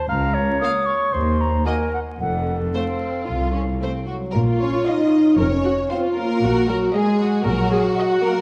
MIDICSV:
0, 0, Header, 1, 9, 480
1, 0, Start_track
1, 0, Key_signature, -5, "minor"
1, 0, Tempo, 521286
1, 90, Time_signature, 4, 2, 24, 8
1, 1531, Tempo, 536193
1, 3931, Tempo, 518135
1, 7700, End_track
2, 0, Start_track
2, 0, Title_t, "Flute"
2, 0, Program_c, 0, 73
2, 82, Note_on_c, 0, 82, 63
2, 552, Note_off_c, 0, 82, 0
2, 559, Note_on_c, 0, 87, 72
2, 791, Note_on_c, 0, 85, 63
2, 805, Note_off_c, 0, 87, 0
2, 1044, Note_on_c, 0, 84, 57
2, 1058, Note_off_c, 0, 85, 0
2, 1297, Note_on_c, 0, 82, 52
2, 1311, Note_off_c, 0, 84, 0
2, 1529, Note_on_c, 0, 80, 53
2, 1542, Note_off_c, 0, 82, 0
2, 1770, Note_off_c, 0, 80, 0
2, 1775, Note_on_c, 0, 78, 51
2, 1829, Note_off_c, 0, 78, 0
2, 2013, Note_on_c, 0, 78, 65
2, 2324, Note_off_c, 0, 78, 0
2, 2500, Note_on_c, 0, 77, 46
2, 3660, Note_off_c, 0, 77, 0
2, 7700, End_track
3, 0, Start_track
3, 0, Title_t, "Violin section"
3, 0, Program_c, 1, 48
3, 582, Note_on_c, 1, 77, 44
3, 656, Note_off_c, 1, 77, 0
3, 1532, Note_on_c, 1, 75, 41
3, 1604, Note_off_c, 1, 75, 0
3, 2502, Note_on_c, 1, 72, 41
3, 2574, Note_off_c, 1, 72, 0
3, 3469, Note_on_c, 1, 72, 35
3, 3540, Note_off_c, 1, 72, 0
3, 4415, Note_on_c, 1, 77, 54
3, 4769, Note_off_c, 1, 77, 0
3, 5375, Note_on_c, 1, 77, 51
3, 5731, Note_off_c, 1, 77, 0
3, 6329, Note_on_c, 1, 75, 59
3, 6687, Note_off_c, 1, 75, 0
3, 7303, Note_on_c, 1, 75, 67
3, 7654, Note_off_c, 1, 75, 0
3, 7700, End_track
4, 0, Start_track
4, 0, Title_t, "Clarinet"
4, 0, Program_c, 2, 71
4, 83, Note_on_c, 2, 77, 61
4, 316, Note_on_c, 2, 73, 55
4, 329, Note_off_c, 2, 77, 0
4, 1040, Note_on_c, 2, 72, 47
4, 1054, Note_off_c, 2, 73, 0
4, 1521, Note_off_c, 2, 72, 0
4, 1527, Note_on_c, 2, 70, 50
4, 1835, Note_off_c, 2, 70, 0
4, 2013, Note_on_c, 2, 69, 49
4, 3660, Note_off_c, 2, 69, 0
4, 7700, End_track
5, 0, Start_track
5, 0, Title_t, "Viola section"
5, 0, Program_c, 3, 48
5, 574, Note_on_c, 3, 58, 44
5, 648, Note_off_c, 3, 58, 0
5, 1530, Note_on_c, 3, 58, 39
5, 1602, Note_off_c, 3, 58, 0
5, 2494, Note_on_c, 3, 57, 39
5, 2566, Note_off_c, 3, 57, 0
5, 3455, Note_on_c, 3, 57, 39
5, 3526, Note_off_c, 3, 57, 0
5, 3934, Note_on_c, 3, 65, 52
5, 4853, Note_off_c, 3, 65, 0
5, 4892, Note_on_c, 3, 70, 54
5, 4966, Note_off_c, 3, 70, 0
5, 5134, Note_on_c, 3, 66, 56
5, 5208, Note_off_c, 3, 66, 0
5, 5374, Note_on_c, 3, 65, 51
5, 5844, Note_off_c, 3, 65, 0
5, 5864, Note_on_c, 3, 66, 56
5, 6099, Note_off_c, 3, 66, 0
5, 6103, Note_on_c, 3, 70, 62
5, 6177, Note_off_c, 3, 70, 0
5, 6343, Note_on_c, 3, 68, 62
5, 6572, Note_off_c, 3, 68, 0
5, 6580, Note_on_c, 3, 66, 51
5, 6811, Note_off_c, 3, 66, 0
5, 6816, Note_on_c, 3, 70, 57
5, 7055, Note_off_c, 3, 70, 0
5, 7058, Note_on_c, 3, 68, 66
5, 7132, Note_off_c, 3, 68, 0
5, 7290, Note_on_c, 3, 66, 68
5, 7700, Note_off_c, 3, 66, 0
5, 7700, End_track
6, 0, Start_track
6, 0, Title_t, "Violin section"
6, 0, Program_c, 4, 48
6, 569, Note_on_c, 4, 65, 36
6, 642, Note_off_c, 4, 65, 0
6, 1526, Note_on_c, 4, 66, 43
6, 1598, Note_off_c, 4, 66, 0
6, 2493, Note_on_c, 4, 60, 46
6, 2942, Note_off_c, 4, 60, 0
6, 2968, Note_on_c, 4, 65, 50
6, 3210, Note_on_c, 4, 61, 49
6, 3213, Note_off_c, 4, 65, 0
6, 3282, Note_off_c, 4, 61, 0
6, 3445, Note_on_c, 4, 60, 35
6, 3678, Note_on_c, 4, 66, 47
6, 3685, Note_off_c, 4, 60, 0
6, 3749, Note_off_c, 4, 66, 0
6, 3906, Note_on_c, 4, 70, 53
6, 3979, Note_off_c, 4, 70, 0
6, 4158, Note_on_c, 4, 73, 60
6, 4398, Note_off_c, 4, 73, 0
6, 4398, Note_on_c, 4, 75, 60
6, 4884, Note_off_c, 4, 75, 0
6, 4884, Note_on_c, 4, 73, 61
6, 5359, Note_off_c, 4, 73, 0
6, 5368, Note_on_c, 4, 72, 63
6, 5442, Note_off_c, 4, 72, 0
6, 5607, Note_on_c, 4, 70, 67
6, 6081, Note_off_c, 4, 70, 0
6, 6092, Note_on_c, 4, 66, 60
6, 6332, Note_off_c, 4, 66, 0
6, 6343, Note_on_c, 4, 68, 64
6, 6807, Note_off_c, 4, 68, 0
6, 6818, Note_on_c, 4, 66, 75
6, 7522, Note_off_c, 4, 66, 0
6, 7536, Note_on_c, 4, 70, 69
6, 7700, Note_off_c, 4, 70, 0
6, 7700, End_track
7, 0, Start_track
7, 0, Title_t, "French horn section"
7, 0, Program_c, 5, 60
7, 3706, Note_on_c, 5, 54, 52
7, 3921, Note_off_c, 5, 54, 0
7, 3929, Note_on_c, 5, 58, 61
7, 4170, Note_off_c, 5, 58, 0
7, 4195, Note_on_c, 5, 61, 58
7, 4297, Note_off_c, 5, 61, 0
7, 4426, Note_on_c, 5, 63, 67
7, 4888, Note_off_c, 5, 63, 0
7, 4901, Note_on_c, 5, 61, 69
7, 4960, Note_off_c, 5, 61, 0
7, 4971, Note_on_c, 5, 60, 62
7, 5028, Note_off_c, 5, 60, 0
7, 5028, Note_on_c, 5, 61, 70
7, 5376, Note_off_c, 5, 61, 0
7, 5393, Note_on_c, 5, 60, 73
7, 5496, Note_off_c, 5, 60, 0
7, 5631, Note_on_c, 5, 58, 71
7, 6094, Note_off_c, 5, 58, 0
7, 6106, Note_on_c, 5, 54, 64
7, 6340, Note_off_c, 5, 54, 0
7, 6343, Note_on_c, 5, 56, 73
7, 6804, Note_on_c, 5, 54, 75
7, 6807, Note_off_c, 5, 56, 0
7, 7515, Note_off_c, 5, 54, 0
7, 7522, Note_on_c, 5, 58, 69
7, 7631, Note_off_c, 5, 58, 0
7, 7700, End_track
8, 0, Start_track
8, 0, Title_t, "Cello section"
8, 0, Program_c, 6, 48
8, 90, Note_on_c, 6, 37, 61
8, 487, Note_off_c, 6, 37, 0
8, 1044, Note_on_c, 6, 39, 50
8, 1449, Note_off_c, 6, 39, 0
8, 2011, Note_on_c, 6, 41, 50
8, 2418, Note_off_c, 6, 41, 0
8, 2984, Note_on_c, 6, 36, 44
8, 3380, Note_off_c, 6, 36, 0
8, 3938, Note_on_c, 6, 46, 67
8, 4313, Note_off_c, 6, 46, 0
8, 4895, Note_on_c, 6, 41, 58
8, 5274, Note_off_c, 6, 41, 0
8, 5860, Note_on_c, 6, 46, 66
8, 6237, Note_off_c, 6, 46, 0
8, 6820, Note_on_c, 6, 46, 65
8, 7198, Note_off_c, 6, 46, 0
8, 7700, End_track
9, 0, Start_track
9, 0, Title_t, "Double bass section"
9, 0, Program_c, 7, 48
9, 90, Note_on_c, 7, 37, 54
9, 487, Note_off_c, 7, 37, 0
9, 1046, Note_on_c, 7, 39, 52
9, 1451, Note_off_c, 7, 39, 0
9, 2008, Note_on_c, 7, 29, 48
9, 2416, Note_off_c, 7, 29, 0
9, 2979, Note_on_c, 7, 36, 44
9, 3377, Note_off_c, 7, 36, 0
9, 3928, Note_on_c, 7, 34, 56
9, 4308, Note_off_c, 7, 34, 0
9, 4886, Note_on_c, 7, 29, 58
9, 5269, Note_off_c, 7, 29, 0
9, 5853, Note_on_c, 7, 34, 58
9, 6233, Note_off_c, 7, 34, 0
9, 6817, Note_on_c, 7, 34, 73
9, 7196, Note_off_c, 7, 34, 0
9, 7700, End_track
0, 0, End_of_file